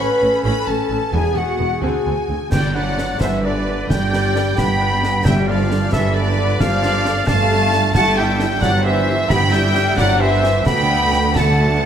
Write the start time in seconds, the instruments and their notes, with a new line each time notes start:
Already playing: clarinet C#4, viola section A4
0.00 french horn section B4, flute section B5, violin section B5
0.21 double bass section A1, cello section A2, viola section C#4
0.44 double bass section A1, cello section A2, viola section C#4, french horn section B4, flute section B5, violin section B5
0.67 double bass section A1, cello section A2, viola section C#4, french horn section A4, flute section A5, violin section A5
0.89 double bass section A1, cello section A2, viola section C#4
1.12 double bass section E1, cello section E2, timpani E2, clarinet B3, viola section B3 G#4, french horn section G#4, flute section G#5, violin section G#5
1.35 double bass section E1, cello section E2, viola section B3, french horn section F#4, flute section F#5, violin section F#5
1.59 double bass section E1, cello section E2, viola section B3
1.81 cello section D2, double bass section D2, viola section C4 F#4, clarinet D4, french horn section G#4, flute section G#5, violin section G#5
2.05 cello section D2, double bass section D2, viola section C4
2.28 cello section D2, double bass section D2, viola section C4
2.51 double bass section G1, cello section G2, timpani G2, french horn section G3, viola section D4 B4, flute section D5, violin section D5 G5, oboe G5, trumpet section G5, concert bass drum, snare, crash
2.74 french horn section F#3, viola section D4 B4, violin section D5 F#5, flute section D5, trumpet section F#5, oboe F#5
2.98 viola section D4 B4, snare
3.20 double bass section G1, cello section G2, french horn section E3, viola section D4 B4, violin section C5 E5, flute section C5, trumpet section E5, oboe E5, concert bass drum, snare
3.43 french horn section D3, viola section D4 B4, flute section B4, violin section B4 D5, trumpet section D5, oboe D5
3.67 viola section D4 B4
3.88 double bass section G1, cello section G2, french horn section G3, viola section D4 B4, flute section D5, violin section D5 G5, trumpet section G5, oboe G5, concert bass drum, snare
4.13 viola section D4 B4, snare
4.36 viola section D4 B4, snare
4.57 double bass section G1, cello section G2, french horn section B3, viola section D4 B4, flute section G5, violin section G5 B5, trumpet section B5, oboe B5, concert bass drum, snare
4.80 viola section D4 B4
5.03 viola section D4 B4, snare
5.24 double bass section G1, cello section G2, timpani G2, french horn section G3, viola section D4 A4, violin section E5 G5, flute section E5, oboe G5, trumpet section G5, concert bass drum, snare, crash
5.47 french horn section F3, viola section D4 A4, flute section D5, violin section D5 F5, oboe F5, trumpet section F5
5.70 viola section D4 A4, snare
5.92 double bass section G1, cello section G2, french horn section E3, viola section D4 A4, violin section A4 E5, flute section A4, trumpet section E5, oboe E5, concert bass drum, snare
6.15 french horn section D3, viola section D4 A4, violin section B4 D5, flute section B4, trumpet section D5, oboe D5
6.37 viola section D4 A4
6.59 double bass section G1, cello section G2, french horn section F3, viola section D4 A4, violin section D5 F5, flute section D5, trumpet section F5, oboe F5, concert bass drum, snare
6.83 viola section D4 A4, snare
7.05 viola section D4 A4, snare
7.27 double bass section G1, cello section G2, french horn section A3, viola section D4 A4, violin section F5 A5, flute section F5, trumpet section A5, oboe A5, concert bass drum, snare
7.51 viola section D4 A4
7.72 viola section D4 A4, snare
7.94 double bass section G1, cello section G2, french horn section A3, viola section E4 G4, violin section F#5 A5, flute section F#5, trumpet section A5, oboe A5, concert bass drum, snare, crash
8.17 french horn section G3, viola section E4 G4, flute section E5, violin section E5 G5, trumpet section G5, oboe G5
8.40 viola section E4 G4, snare
8.61 double bass section G1, cello section G2, french horn section F#3, viola section E4 G4, violin section D5 F#5, flute section D5, trumpet section F#5, oboe F#5, concert bass drum, snare
8.84 french horn section E3, viola section E4 G4, flute section C5, violin section C5 E5, trumpet section E5, oboe E5
9.08 viola section E4 G4
9.29 double bass section G1, cello section G2, french horn section B3, viola section E4 G4, flute section G5, violin section G5 B5, oboe B5, trumpet section B5, concert bass drum, snare
9.50 french horn section G3, viola section E4 G4, flute section E5, violin section E5 G5, trumpet section G5, oboe G5, snare
9.74 viola section E4 G4, snare
9.96 double bass section G1, cello section G2, french horn section F#3, viola section E4 G4, flute section D5, violin section D5 F#5, oboe F#5, trumpet section F#5, concert bass drum, snare
10.19 french horn section E3, viola section E4 G4, violin section C5 E5, flute section C5, trumpet section E5, oboe E5
10.43 viola section E4 G4, snare
10.66 double bass section D2, cello section D2, timpani D3, french horn section B3, viola section D4 A4, violin section G5 B5, flute section G5, trumpet section B5, oboe B5, concert bass drum, snare, crash
10.75 timpani D3
10.83 timpani D3
10.90 timpani D3
11.05 timpani D3
11.12 timpani D3, snare
11.20 timpani D3
11.28 timpani D3
11.36 timpani D3, french horn section A3, viola section D4 A4, violin section F#5 A5, flute section F#5, trumpet section A5, oboe A5, concert bass drum, snare
11.44 timpani D3
11.51 timpani D3
11.59 timpani D3
11.66 timpani D3
11.74 timpani D3